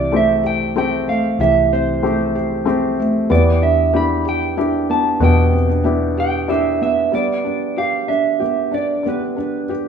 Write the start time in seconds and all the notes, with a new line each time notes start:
Already playing: C2 C3 E3 C4 G4 D5
0.11 A3 C4 G4
0.16 E5
0.43 G4 G5
0.75 A3 C4 G4 G5
1.08 A3 F5
1.39 C2 C3 E3 G4 E5
1.73 C4 C5
2.03 A3 C4 G4
2.35 G4
2.65 A3 C4 G4
3.00 A3
3.30 E2 E3 B3 G4 D5
3.62 D4 E5
3.93 B3 D4 E4 G4 B5
4.25 G4 G5
4.57 D4 E4 G4
4.90 B3 A5
5.20 E2 B2 B3 G4 G5
5.53 C4
5.69 D4
5.84 B3 D4 E4 G4
6.17 G4 G5
6.48 D4 E4 G4 E5
6.81 B3 E5
7.12 G3 B3 G4 D5
7.45 D4
7.77 G4 F5
8.08 D4 E5
8.40 B3 G4
8.71 D4 D5
9.03 D3 B3 G4
9.09 B4
9.37 D4
9.69 G4